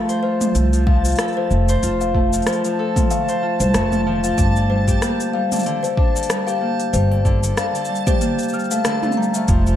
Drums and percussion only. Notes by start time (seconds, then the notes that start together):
0.09 open hi-hat, shaker
0.41 mid tom, open hi-hat, shaker
0.55 open hi-hat, shaker
0.73 open hi-hat, shaker
0.87 kick
1.05 open hi-hat, shaker
1.09 open hi-hat
1.12 open hi-hat
1.16 cross-stick, open hi-hat
1.19 open hi-hat, shaker
1.23 open hi-hat
1.28 open hi-hat
1.32 open hi-hat
1.51 shaker
1.69 open hi-hat, shaker
1.83 open hi-hat, shaker
2.01 shaker
2.15 kick
2.33 open hi-hat, shaker
2.42 open hi-hat
2.47 cross-stick, open hi-hat, shaker
2.53 open hi-hat
2.65 open hi-hat, shaker
2.96 kick, mid tom, open hi-hat, shaker
3.10 open hi-hat, shaker
3.29 open hi-hat, shaker
3.60 open hi-hat, shaker
3.74 cross-stick, open hi-hat, shaker
3.92 mid tom, shaker
4.24 open hi-hat, shaker
4.38 kick, open hi-hat, shaker
4.56 shaker
4.88 kick, open hi-hat, shaker
5.02 cross-stick, open hi-hat, shaker
5.20 open hi-hat, shaker
5.52 mid tom, open hi-hat, shaker
5.56 shaker
5.59 shaker
5.63 open hi-hat, shaker
5.84 open hi-hat, shaker
5.97 kick
6.16 shaker
6.23 open hi-hat
6.30 cross-stick, open hi-hat, shaker
6.48 shaker
6.80 open hi-hat
6.94 open hi-hat, shaker
7.12 open hi-hat
7.25 kick, shaker
7.43 open hi-hat, shaker
7.57 cross-stick, open hi-hat, shaker
7.75 open hi-hat, shaker
7.85 shaker
7.95 shaker
8.07 kick, mid tom, open hi-hat, shaker
8.21 open hi-hat, shaker
8.39 open hi-hat, shaker
8.43 shaker
8.49 shaker
8.53 shaker
8.59 shaker
8.64 shaker
8.71 open hi-hat, shaker
8.85 cross-stick, open hi-hat, shaker
9.03 mid tom, shaker
9.12 shaker
9.23 shaker
9.34 open hi-hat, shaker
9.48 kick, open hi-hat, shaker
9.67 shaker